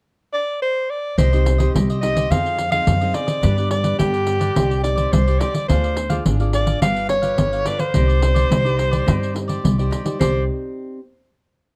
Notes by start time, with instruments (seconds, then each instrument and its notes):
0.33 soprano saxophone D5
0.62 soprano saxophone C5
0.90 soprano saxophone D5
1.17 upright bass C2, nylon-string guitar C3 C4 D#4 G4, cavaquinho D#4 G4 C5 D#5, soprano saxophone C5, pandeiro
1.33 nylon-string guitar C4 D#4 G4, cavaquinho G4 C5 D#5, pandeiro
1.46 muted cavaquinho stroke, pandeiro
1.58 nylon-string guitar C4 D#4 G4, cavaquinho G4 C5 D#5, pandeiro
1.74 upright bass C2, nylon-string guitar G3, cavaquinho D#4 G4 C5 D#5, pandeiro
1.90 cavaquinho G4 C5 D#5, pandeiro
2.01 nylon-string guitar C4 D#4 G4, cavaquinho D#4 G4 C5 D#5, soprano saxophone D#5, pandeiro
2.15 cavaquinho G4 C5 D#5, pandeiro
2.30 upright bass F2, nylon-string guitar F3 C4 D#4 G#4, cavaquinho F4 G#4 C5 D#5, soprano saxophone F5, pandeiro
2.46 pandeiro
2.58 muted cavaquinho stroke, pandeiro
2.71 nylon-string guitar C4 D#4 G#4, cavaquinho G#4 C5 D#5, soprano saxophone F5, pandeiro
2.87 upright bass F#2, nylon-string guitar C3, pandeiro
3.01 nylon-string guitar C4 D#4 G#4, cavaquinho G#4 C5 D#5, pandeiro
3.13 cavaquinho F4 G#4 C5 D#5, soprano saxophone D5, pandeiro
3.27 cavaquinho G#4 C5 D#5, pandeiro
3.42 upright bass G2, nylon-string guitar G3 B3 D4 G4, cavaquinho D4 G4 B4 D5, pandeiro
3.58 nylon-string guitar B3 D4 G4, cavaquinho G4 B4 D5, pandeiro
3.71 soprano saxophone D5, muted cavaquinho stroke, pandeiro
3.83 cavaquinho G4 B4 D5, pandeiro
3.98 upright bass G2, nylon-string guitar D3 B3 D4 G4, cavaquinho D4 G4 B4 D5, soprano saxophone G4, pandeiro
4.13 cavaquinho G4 B4 D5, pandeiro
4.27 cavaquinho D4 G4 B4 D5, pandeiro
4.39 cavaquinho G4 B4 D5, pandeiro
4.55 upright bass C2, nylon-string guitar C4 D#4 G4 D5, cavaquinho D#4 G4 C5 D5, pandeiro
4.71 pandeiro
4.83 nylon-string guitar D#4 G4 D5, soprano saxophone D5, muted cavaquinho stroke, pandeiro
4.96 cavaquinho G4 C5 D5, pandeiro
5.12 upright bass C2, nylon-string guitar G3, soprano saxophone C5, pandeiro
5.27 nylon-string guitar D#4 G4 D5, cavaquinho G4 C5 D5, pandeiro
5.40 cavaquinho D#4 G4 C5 D5, nylon-string guitar D#4 G4 D5, soprano saxophone D5, pandeiro
5.54 cavaquinho G4 C5 D5, pandeiro
5.69 upright bass D2, cavaquinho D4 G#4 D5 F5, nylon-string guitar D4 F4 G#4 D5, soprano saxophone C5, pandeiro
5.83 cavaquinho G#4 D5 F5, pandeiro
5.97 muted cavaquinho stroke, pandeiro
6.09 nylon-string guitar F4 G#4 D5, cavaquinho G#4 D5 F5, pandeiro
6.25 upright bass G#1, cavaquinho D4 G#4 D5 F5, nylon-string guitar D4, pandeiro
6.40 nylon-string guitar F4 G#4 D5, cavaquinho G#4 D5 F5, pandeiro
6.53 cavaquinho D4 G#4 D5 F5, soprano saxophone D5, pandeiro
6.66 cavaquinho G#4 D5 F5, pandeiro
6.81 upright bass G1, nylon-string guitar G3 F4 B4 D5, cavaquinho D4 G4 B4 F5, soprano saxophone F5, pandeiro
6.96 pandeiro
7.09 soprano saxophone C#5, muted cavaquinho stroke, pandeiro
7.22 nylon-string guitar F4 B4, cavaquinho G4 B4 F5, pandeiro
7.38 upright bass G1, nylon-string guitar D3, pandeiro
7.53 cavaquinho G4 B4 F5, pandeiro
7.65 cavaquinho D4 G4 B4 F5, nylon-string guitar F4 B4 D5, soprano saxophone D5, pandeiro
7.79 cavaquinho G4 B4 F5, soprano saxophone C5, pandeiro
7.94 upright bass C2, nylon-string guitar C4 D#4 G4 D5, cavaquinho D#4 G4 C5 D5, pandeiro
8.07 cavaquinho G4 C5 D5, pandeiro
8.21 nylon-string guitar D#4 G4 D5, muted cavaquinho stroke, pandeiro
8.34 cavaquinho G4 C5 D5, pandeiro
8.49 upright bass C2, nylon-string guitar G3, cavaquinho D#4 G4 C5 D5, pandeiro
8.64 nylon-string guitar D#4 G4 D5, cavaquinho G4 C5 D5, pandeiro
8.76 cavaquinho D#4 G4 C5 D5, pandeiro
8.91 cavaquinho G4 C5 D5, pandeiro
9.06 upright bass G2, nylon-string guitar C4 D#4 G4 D5, cavaquinho D#4 G4 C5 D5, pandeiro
9.23 pandeiro
9.34 nylon-string guitar D#4 G4 D5, muted cavaquinho stroke, pandeiro
9.48 cavaquinho G4 C5 D5, pandeiro
9.63 upright bass C2, nylon-string guitar G3, pandeiro
9.78 nylon-string guitar D#4 G4 D5, cavaquinho G4 C5 D5, pandeiro
9.91 cavaquinho D#4 G4 C5 D5, pandeiro
10.05 nylon-string guitar D#4 G4 D5, cavaquinho G4 C5 D5, pandeiro
10.19 upright bass C2, nylon-string guitar C4 D#4 G4 D5, cavaquinho D#4 G4 C5 D5, soprano saxophone C5, pandeiro